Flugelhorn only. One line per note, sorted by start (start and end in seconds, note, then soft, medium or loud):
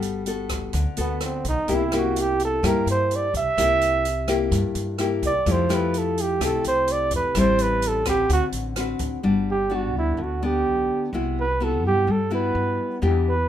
1.00 1.26 B3 medium
1.25 1.46 C4 medium
1.48 1.76 D#4 medium
1.74 1.95 E4 medium
1.97 2.22 F#4 medium
2.20 2.42 G4 medium
2.45 2.69 A4 medium
2.67 2.89 A#4 medium
2.90 3.17 C5 medium
3.16 3.36 D5 medium
3.37 4.50 E5 loud
5.26 5.53 D5 medium
5.51 5.76 C5 medium
5.74 6.00 B4 medium
5.98 6.22 A4 medium
6.21 6.47 G4 medium
6.45 6.67 A4 medium
6.68 6.93 C5 medium
6.92 7.14 D5 medium
7.16 7.41 B4 medium
7.39 7.63 C5 medium
7.62 7.89 B4 loud
7.87 8.08 A4 medium
8.09 8.30 G4 medium
8.33 8.46 F#4 medium
9.51 9.77 G4 medium
9.75 9.97 F#4 medium
9.98 10.24 E4 medium
10.23 10.44 F#4 medium
10.45 11.11 G4 medium
11.40 11.65 B4 medium
11.64 11.86 A4 medium
11.87 12.13 G4 medium
12.11 12.33 A4 medium
12.34 13.00 B4 medium
13.28 13.49 B4 medium